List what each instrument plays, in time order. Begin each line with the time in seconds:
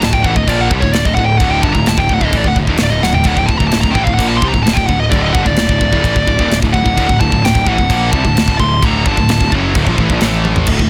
0.01 picked electric bass D1, distorted electric guitar D2 A2, lead electric guitar A5, snare, crash
0.13 picked electric bass D1, distorted electric guitar D2 A2, lead electric guitar G5, kick
0.23 picked electric bass A1, distorted electric guitar A2 E3, lead electric guitar F#5, kick
0.36 picked electric bass D1, distorted electric guitar D2 A2, lead electric guitar D#5, kick
0.47 picked electric bass A#1, distorted electric guitar A#2 F3 A#3, lead electric guitar D5, kick, crash
0.61 lead electric guitar F#5
0.70 picked electric bass C2, distorted electric guitar C3 G3, kick
0.81 picked electric bass D1, distorted electric guitar D2 A2, lead electric guitar C#5, kick
0.93 picked electric bass D1, distorted electric guitar D2 A2, lead electric guitar D5, snare, crash
1.05 picked electric bass D1, distorted electric guitar D2 A2, lead electric guitar D#5, kick
1.15 picked electric bass D1, distorted electric guitar D2, lead electric guitar F#5, kick
1.19 distorted electric guitar A2
1.26 lead electric guitar G5
1.38 picked electric bass D1, distorted electric guitar D2 A2 D3, lead electric guitar F#5, kick, crash
1.51 lead electric guitar G5
1.62 picked electric bass G1, distorted electric guitar G2 D3, lead electric guitar A5, kick
1.73 picked electric bass D1, distorted electric guitar D2 A2, lead electric guitar A#5, kick
1.86 picked electric bass D1, distorted electric guitar D2 A2, lead electric guitar A5, snare, crash
1.97 picked electric bass D1, distorted electric guitar D2 A2, lead electric guitar G5, kick
2.09 picked electric bass D1, distorted electric guitar D2 A2, kick
2.14 lead electric guitar F#5
2.20 picked electric bass D1, distorted electric guitar D2 A2, kick
2.25 lead electric guitar D#5
2.32 picked electric bass A1, distorted electric guitar A2 E3, kick, crash
2.37 lead electric guitar D5
2.44 picked electric bass D1, distorted electric guitar D2 A2, lead electric guitar F#5, kick
2.56 picked electric bass D1, distorted electric guitar D2 A2, kick
2.67 picked electric bass D#1, distorted electric guitar D#2 A#2, kick
2.78 picked electric bass D1, distorted electric guitar D2 A2, snare, crash
2.83 lead electric guitar D5
2.91 picked electric bass D1, distorted electric guitar D2 A2, lead electric guitar D#5
3.02 picked electric bass D1, distorted electric guitar D2 A2, lead electric guitar F#5, snare
3.13 picked electric bass D1, distorted electric guitar D2 A2, lead electric guitar G5, floor tom
3.24 picked electric bass D1, distorted electric guitar D2 A2, lead electric guitar F#5, kick, crash
3.36 picked electric bass D1, distorted electric guitar D2 A2, lead electric guitar G5, kick
3.46 picked electric bass D1, distorted electric guitar D2 A2, lead electric guitar A5, kick
3.57 picked electric bass D1, lead electric guitar A#5, kick
3.62 distorted electric guitar D2 A2
3.67 lead electric guitar A5
3.72 picked electric bass D1, distorted electric guitar D2 A2, snare, crash
3.81 picked electric bass D1, lead electric guitar A#5, kick
3.86 distorted electric guitar D2 A2
3.91 lead electric guitar G5
3.95 picked electric bass A1, distorted electric guitar A2 E3, kick
4.04 picked electric bass D1, lead electric guitar F5, kick
4.08 distorted electric guitar D2 A2
4.14 lead electric guitar F#5
4.18 picked electric bass A#1, distorted electric guitar A#2 F3 A#3, kick, crash
4.28 lead electric guitar A5
4.37 lead electric guitar C6
4.41 picked electric bass C2, distorted electric guitar C3 G3, kick
4.48 lead electric guitar A#5
4.54 picked electric bass D1, distorted electric guitar D2 A2, kick
4.63 picked electric bass D1, distorted electric guitar D2 A2, lead electric guitar A5, crash
4.68 snare
4.73 picked electric bass D1, lead electric guitar G5, kick
4.78 distorted electric guitar D2 A2
4.86 picked electric bass D1, distorted electric guitar D2, lead electric guitar F#5, kick
4.90 distorted electric guitar A2
4.99 lead electric guitar D#5
5.10 picked electric bass D1, distorted electric guitar D2 A2 D3, lead electric guitar D5, kick, crash
5.22 lead electric guitar D#5
5.33 picked electric bass G1, distorted electric guitar G2 D3, lead electric guitar F#5, kick
5.43 picked electric bass D1, lead electric guitar D5, kick
5.48 distorted electric guitar D2 A2
5.56 picked electric bass D1, distorted electric guitar D2 A2, snare, crash
5.69 picked electric bass D1, distorted electric guitar D2 A2, kick
5.81 picked electric bass D1, distorted electric guitar D2 A2, kick
5.92 picked electric bass D1, distorted electric guitar D2 A2, kick
6.03 picked electric bass A1, distorted electric guitar A2 E3, kick, crash
6.16 picked electric bass D1, distorted electric guitar D2 A2, kick
6.27 picked electric bass D1, distorted electric guitar D2 A2, kick
6.39 picked electric bass D#1, distorted electric guitar D#2 A#2, kick
6.49 picked electric bass D1, distorted electric guitar D2 A2, snare, crash
6.62 picked electric bass D1, distorted electric guitar D2 A2, kick
6.73 picked electric bass D1, distorted electric guitar D2 A2, lead electric guitar F#5, kick
6.85 picked electric bass D1, distorted electric guitar D2 A2, kick
6.97 picked electric bass D1, distorted electric guitar D2 A2, kick, crash
7.09 picked electric bass D1, distorted electric guitar D2 A2, kick
7.20 picked electric bass D1, distorted electric guitar D2 A2, lead electric guitar A5, kick
7.32 picked electric bass D1, distorted electric guitar D2 A2, kick
7.42 picked electric bass D1, distorted electric guitar D2 A2, lead electric guitar G5, crash
7.46 snare
7.54 picked electric bass D1, distorted electric guitar D2 A2, kick
7.66 picked electric bass A1, distorted electric guitar A2 E3, lead electric guitar F#5, kick
7.77 picked electric bass D1, distorted electric guitar D2 A2, kick
7.89 picked electric bass A#1, distorted electric guitar A#2 F3 A#3, kick, crash
8.11 picked electric bass C2, distorted electric guitar C3 G3, lead electric guitar A5, kick
8.25 picked electric bass D1, distorted electric guitar D2 A2, kick
8.35 picked electric bass D1, distorted electric guitar D2 A2, snare, crash
8.48 picked electric bass D1, distorted electric guitar D2 A2, kick
8.59 picked electric bass D1, distorted electric guitar D2 A2, lead electric guitar C6, kick
8.82 picked electric bass D1, distorted electric guitar D2 A2 D3, lead electric guitar A#5, kick, crash
9.05 picked electric bass G1, distorted electric guitar G2 D3, lead electric guitar A5, kick
9.17 picked electric bass D1, distorted electric guitar D2 A2, kick
9.29 picked electric bass D1, distorted electric guitar D2 A2, snare, crash
9.40 picked electric bass D1, distorted electric guitar D2 A2, kick
9.52 picked electric bass F#1, distorted electric guitar F#2 C#3 F#3, kick
9.75 picked electric bass D1, distorted electric guitar D2 A2, kick, crash
9.87 picked electric bass A#1, distorted electric guitar A#2 F3, kick
9.98 picked electric bass A1, distorted electric guitar A2 E3, kick
10.10 picked electric bass A#1, distorted electric guitar A#2 F3, kick
10.21 picked electric bass A1, distorted electric guitar A2 E3 A3, snare, crash
10.45 high tom
10.56 floor tom
10.67 picked electric bass D1, distorted electric guitar D2 A2, kick, crash
10.79 picked electric bass D1, distorted electric guitar D2 A2, kick